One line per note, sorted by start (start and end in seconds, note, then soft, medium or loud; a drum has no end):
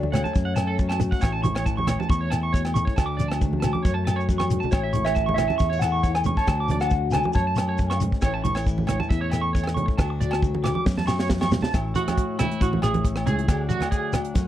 0.00 0.23 D2 medium
0.00 0.33 D3 medium
0.00 0.33 F#3 medium
0.00 0.14 A3 medium
0.00 0.33 D4 medium
0.00 2.11 F#4 medium
0.00 0.13 D5 medium
0.00 high conga medium
0.12 1.00 A3 soft
0.12 0.97 C#5 medium
0.12 0.22 F#5 medium
0.12 cross-stick medium
0.12 closed hi-hat medium
0.12 low conga medium
0.12 low agogo medium
0.12 shekere medium
0.24 0.33 A5 medium
0.24 high conga medium
0.24 shekere soft
0.33 1.10 F#2 medium
0.33 1.19 F#2 medium
0.33 muted clean electric guitar stroke medium
0.33 kick medium
0.33 shekere medium
0.45 0.54 F#5 medium
0.56 1.42 C#4 medium
0.56 0.66 A5 medium
0.56 cross-stick medium
0.56 closed hi-hat soft
0.56 low agogo medium
0.56 shekere loud
0.67 0.76 A4 medium
0.79 1.20 F#3 medium
0.79 kick medium
0.79 shekere medium
0.89 0.98 A5 medium
0.89 cross-stick medium
0.89 low agogo medium
1.00 2.56 A3 medium
1.00 closed hi-hat soft
1.00 low conga medium
1.00 shekere medium
1.11 1.20 F#5 medium
1.11 kick medium
1.20 1.97 A1 medium
1.20 2.93 A2 medium
1.20 1.31 C#5 medium
1.20 kick medium
1.20 low agogo medium
1.20 shekere medium
1.24 cross-stick medium
1.32 1.42 A5 medium
1.43 2.08 E4 medium
1.43 1.54 C#6 medium
1.43 closed hi-hat soft
1.43 high conga medium
1.43 low conga medium
1.43 shekere medium
1.55 1.64 C#5 medium
1.55 cross-stick medium
1.55 low agogo medium
1.55 shekere soft
1.65 2.96 E3 medium
1.65 1.76 A5 medium
1.65 kick medium
1.65 shekere medium
1.77 1.86 C#6 medium
1.77 high conga medium
1.87 1.97 C#5 medium
1.87 cross-stick medium
1.87 closed hi-hat soft
1.87 low conga medium
1.87 low agogo medium
1.87 shekere medium
2.00 2.08 A5 medium
2.00 high conga medium
2.00 shekere soft
2.09 2.85 E2 medium
2.09 2.94 E4 medium
2.09 2.20 C#6 medium
2.09 kick medium
2.09 shekere medium
2.21 2.30 C#5 medium
2.30 2.99 A4 medium
2.30 2.41 A5 medium
2.30 cross-stick medium
2.30 closed hi-hat soft
2.30 low agogo medium
2.30 shekere medium
2.43 2.52 C#6 medium
2.53 2.74 B2 medium
2.53 2.63 C#5 medium
2.53 kick medium
2.53 shekere medium
2.65 cross-stick medium
2.65 low agogo medium
2.74 2.96 C#3 medium
2.74 2.84 C#6 medium
2.74 closed hi-hat medium
2.74 low conga medium
2.74 shekere loud
2.85 2.95 C#5 medium
2.85 kick medium
2.96 3.72 D2 medium
2.96 3.82 D3 medium
2.96 3.64 A3 medium
2.96 3.18 D4 medium
2.96 5.61 F#4 medium
2.96 3.06 A5 medium
2.96 muted steel-string acoustic guitar stroke medium
2.96 kick medium
2.96 cross-stick medium
2.96 low agogo medium
2.96 shekere medium
3.06 3.16 D6 medium
3.17 3.82 D4 medium
3.17 3.28 D5 medium
3.17 closed hi-hat soft
3.17 high conga medium
3.17 shekere medium
3.28 3.38 A5 medium
3.28 cross-stick medium
3.28 low agogo medium
3.28 shekere soft
3.41 3.82 F#3 medium
3.41 kick medium
3.41 low conga medium
3.41 shekere medium
3.53 high conga medium
3.60 3.71 A5 medium
3.60 cross-stick medium
3.60 closed hi-hat medium
3.60 low conga medium
3.60 low agogo medium
3.64 4.52 A3 medium
3.64 shekere medium
3.73 3.82 D6 medium
3.73 high conga medium
3.83 4.60 F#2 medium
3.83 3.93 C#5 medium
3.83 kick medium
3.83 shekere medium
3.87 4.73 F#2 medium
3.94 4.04 A5 medium
4.05 4.16 A5 medium
4.05 cross-stick medium
4.05 closed hi-hat soft
4.05 low agogo medium
4.05 shekere loud
4.09 4.95 C#4 medium
4.16 4.26 C#5 medium
4.20 shekere soft
4.29 4.71 F#3 soft
4.29 kick medium
4.29 high conga soft
4.29 shekere medium
4.38 4.48 C#6 medium
4.38 cross-stick medium
4.38 high conga medium
4.38 low agogo medium
4.50 5.40 A3 soft
4.50 closed hi-hat medium
4.50 low conga medium
4.50 shekere loud
4.60 4.70 A5 medium
4.60 low conga medium
4.60 shekere soft
4.71 5.48 A1 medium
4.71 6.46 A2 medium
4.71 4.81 C#5 medium
4.71 5.07 C#5 medium
4.71 kick medium
4.71 cross-stick medium
4.71 low agogo medium
4.71 shekere medium
4.83 4.92 E5 medium
4.93 5.61 E4 medium
4.93 5.03 C#6 medium
4.93 closed hi-hat soft
4.93 high conga medium
4.93 low conga medium
4.93 shekere medium
5.05 5.14 C#5 medium
5.05 5.33 E5 medium
5.05 cross-stick medium
5.05 low agogo medium
5.05 shekere soft
5.15 6.47 E3 medium
5.15 5.25 A5 medium
5.15 kick medium
5.15 shekere medium
5.26 5.36 C#6 medium
5.26 high conga medium
5.34 5.47 C#5 medium
5.34 5.77 E5 medium
5.34 low agogo medium
5.34 shekere medium
5.38 5.61 C#4 soft
5.38 cross-stick medium
5.38 closed hi-hat soft
5.38 low conga medium
5.48 5.57 A5 medium
5.48 high conga medium
5.48 shekere soft
5.58 6.35 E2 medium
5.58 5.69 C#6 medium
5.58 kick medium
5.58 shekere medium
5.62 5.73 C#4 medium
5.70 6.04 E4 medium
5.70 5.79 C#5 medium
5.79 6.14 F#5 medium
5.79 5.92 A5 medium
5.79 cross-stick medium
5.79 closed hi-hat soft
5.79 low agogo medium
5.79 shekere medium
5.85 6.49 A4 medium
5.92 6.01 C#6 medium
6.03 6.47 E4 medium
6.03 6.13 C#5 medium
6.03 kick medium
6.03 shekere medium
6.15 6.21 G#5 medium
6.15 cross-stick medium
6.15 low agogo medium
6.24 6.46 C#4 medium
6.24 6.36 C#6 medium
6.24 closed hi-hat soft
6.24 low conga medium
6.24 shekere medium
6.37 6.46 C#5 medium
6.37 6.80 A5 medium
6.37 kick medium
6.47 7.22 D2 medium
6.47 7.33 D3 medium
6.47 6.91 F#3 medium
6.47 7.14 A3 medium
6.47 6.70 D4 medium
6.47 8.24 F#4 medium
6.47 6.58 A5 medium
6.47 kick medium
6.47 cross-stick medium
6.47 low agogo medium
6.47 shekere medium
6.60 6.69 D6 medium
6.68 7.33 D4 medium
6.68 6.80 D5 medium
6.68 closed hi-hat medium
6.68 high conga medium
6.68 low conga medium
6.68 shekere medium
6.80 7.12 F#5 medium
6.80 6.90 A5 medium
6.80 cross-stick medium
6.80 low agogo medium
6.80 shekere soft
6.90 7.33 F#3 medium
6.90 kick medium
6.90 shekere medium
7.11 8.25 A3 medium
7.11 7.33 G#5 medium
7.11 7.24 A5 medium
7.11 cross-stick medium
7.11 closed hi-hat medium
7.11 low conga medium
7.11 low agogo medium
7.11 shekere medium
7.23 muted clean electric guitar stroke medium
7.23 high conga medium
7.23 shekere soft
7.33 8.10 F#2 medium
7.33 7.80 F#2 medium
7.33 7.45 C#5 medium
7.33 7.97 A5 medium
7.33 kick medium
7.33 shekere medium
7.47 7.56 A5 medium
7.56 muted clean electric guitar stroke medium
7.56 cross-stick medium
7.56 closed hi-hat soft
7.56 low agogo medium
7.56 shekere medium
7.60 8.24 C#4 medium
7.69 7.77 C#5 medium
7.78 8.02 F#2 medium
7.78 kick medium
7.78 shekere medium
7.90 7.99 C#6 medium
7.90 cross-stick medium
7.90 low agogo medium
8.00 8.23 G#2 medium
8.00 closed hi-hat medium
8.00 low conga medium
8.00 shekere medium
8.12 kick medium
8.21 8.97 A1 medium
8.21 9.96 A2 medium
8.21 8.67 E3 medium
8.21 8.43 C#4 medium
8.21 8.32 C#5 medium
8.21 kick medium
8.21 cross-stick medium
8.21 low agogo medium
8.21 shekere medium
8.26 8.44 E4 medium
8.26 9.33 A4 medium
8.34 8.43 A5 medium
8.44 8.57 C#4 medium
8.44 8.54 C#6 medium
8.44 closed hi-hat soft
8.44 high conga medium
8.44 low conga medium
8.44 shekere medium
8.55 9.11 E4 soft
8.55 8.64 C#5 medium
8.55 cross-stick medium
8.55 low agogo medium
8.55 shekere soft
8.66 9.99 E3 medium
8.66 kick medium
8.66 shekere medium
8.78 high conga medium
8.87 9.75 C#4 medium
8.87 8.98 C#5 medium
8.87 cross-stick medium
8.87 closed hi-hat soft
8.87 low conga medium
8.87 low agogo medium
9.00 9.09 A5 medium
9.00 high conga medium
9.00 shekere soft
9.09 9.85 E2 medium
9.09 9.53 E4 medium
9.09 9.20 E5 medium
9.09 kick medium
9.09 shekere medium
9.21 9.30 C#5 medium
9.30 10.01 A4 medium
9.30 9.41 E5 medium
9.30 cross-stick medium
9.30 closed hi-hat soft
9.30 low agogo medium
9.30 shekere medium
9.41 9.51 C#6 medium
9.53 9.96 E4 medium
9.53 9.63 C#5 medium
9.53 kick medium
9.53 shekere medium
9.63 cross-stick medium
9.63 low agogo medium
9.74 9.96 C#4 medium
9.74 9.85 C#6 medium
9.74 closed hi-hat soft
9.74 low conga medium
9.86 muted clean electric guitar stroke medium
9.86 kick medium
9.98 10.73 D2 medium
9.98 10.84 D3 medium
9.98 10.42 F#3 medium
9.98 10.63 A3 medium
9.98 10.20 D4 medium
9.98 10.07 A5 medium
9.98 kick medium
9.98 cross-stick medium
9.98 low agogo medium
9.98 shekere medium
10.02 10.88 F#4 medium
10.10 muted clean electric guitar stroke medium
10.20 10.84 D4 medium
10.20 10.30 D5 medium
10.20 closed hi-hat soft
10.20 high conga medium
10.20 shekere medium
10.31 10.40 A5 medium
10.31 cross-stick medium
10.31 low agogo medium
10.42 10.84 F#3 medium
10.42 kick medium
10.42 low conga medium
10.42 shekere medium
10.55 high conga medium
10.64 10.86 A3 medium
10.64 10.74 D6 medium
10.64 cross-stick medium
10.64 closed hi-hat soft
10.64 low conga medium
10.64 low agogo medium
10.64 shekere medium
10.75 10.84 D6 medium
10.75 high conga medium
10.86 11.61 F#2 medium
10.86 11.28 F#2 medium
10.86 11.71 F#3 medium
10.86 13.49 A3 medium
10.86 11.08 C#4 medium
10.86 muted clean electric guitar stroke medium
10.86 muted steel-string acoustic guitar stroke medium
10.86 kick medium
10.86 snare soft
10.86 shekere medium
10.97 11.06 A5 medium
10.97 snare soft
10.97 high conga medium
11.07 11.74 C#4 medium
11.07 11.17 C#6 medium
11.07 snare medium
11.07 low agogo medium
11.07 shekere medium
11.19 11.28 C#5 medium
11.19 snare soft
11.19 shekere soft
11.29 11.51 F#2 medium
11.29 kick medium
11.29 snare medium
11.29 high conga soft
11.29 shekere medium
11.41 11.50 C#6 medium
11.41 snare medium
11.41 high conga medium
11.41 low agogo medium
11.51 11.73 G#2 medium
11.51 snare medium
11.51 low conga medium
11.51 shekere medium
11.62 11.71 A5 medium
11.62 snare medium
11.62 low conga medium
11.62 shekere soft
11.73 11.93 A1 medium
11.73 13.02 A2 medium
11.73 11.94 E4 medium
11.73 13.47 C#5 medium
11.73 13.46 E5 medium
11.73 kick medium
11.73 cross-stick medium
11.73 closed hi-hat soft
11.73 low agogo medium
11.73 shekere medium
11.95 12.60 E4 medium
11.95 12.36 F#4 medium
11.95 closed hi-hat medium
11.95 high conga medium
11.95 shekere medium
12.08 cross-stick medium
12.08 closed hi-hat soft
12.08 high conga medium
12.08 low agogo medium
12.17 kick medium
12.17 closed hi-hat soft
12.17 shekere medium
12.39 13.48 E3 medium
12.39 12.60 E4 medium
12.39 cross-stick medium
12.39 closed hi-hat soft
12.39 low conga medium
12.39 low agogo medium
12.39 shekere medium
12.51 closed hi-hat soft
12.60 12.79 A1 medium
12.60 12.81 E4 medium
12.60 12.82 F#4 medium
12.60 kick medium
12.60 closed hi-hat soft
12.60 shekere medium
12.73 high conga medium
12.82 13.26 A1 medium
12.82 13.25 E4 medium
12.82 13.04 G#4 medium
12.82 cross-stick medium
12.82 closed hi-hat soft
12.82 low agogo medium
12.82 shekere medium
12.94 closed hi-hat soft
12.94 high conga medium
13.03 13.45 A2 medium
13.03 kick medium
13.03 closed hi-hat soft
13.03 shekere medium
13.16 cross-stick medium
13.16 low agogo medium
13.26 13.45 C#2 medium
13.26 13.46 E4 medium
13.26 13.67 G#4 medium
13.26 closed hi-hat medium
13.26 low conga medium
13.26 shekere medium
13.39 closed hi-hat soft
13.48 13.67 D2 medium
13.48 14.33 D3 medium
13.48 14.12 F#3 medium
13.48 14.47 A3 medium
13.48 13.70 D4 medium
13.48 14.35 D5 medium
13.48 14.47 F#5 medium
13.48 muted steel-string acoustic guitar stroke medium
13.48 kick medium
13.48 cross-stick medium
13.48 closed hi-hat medium
13.48 low agogo medium
13.48 shekere medium
13.69 14.33 D4 medium
13.69 13.90 F#4 medium
13.69 closed hi-hat medium
13.69 high conga medium
13.69 shekere medium
13.81 cross-stick medium
13.81 closed hi-hat soft
13.81 high conga medium
13.81 low agogo medium
13.91 14.13 G#4 medium
13.91 kick medium
13.91 closed hi-hat soft
13.91 shekere medium
14.13 14.33 F#3 medium
14.13 cross-stick medium
14.13 closed hi-hat medium
14.13 low conga medium
14.13 low agogo medium
14.13 shekere medium
14.25 closed hi-hat medium
14.34 14.47 F#2 medium
14.34 14.47 C#4 medium
14.34 14.47 C#5 medium
14.34 kick medium
14.34 closed hi-hat soft
14.34 shekere medium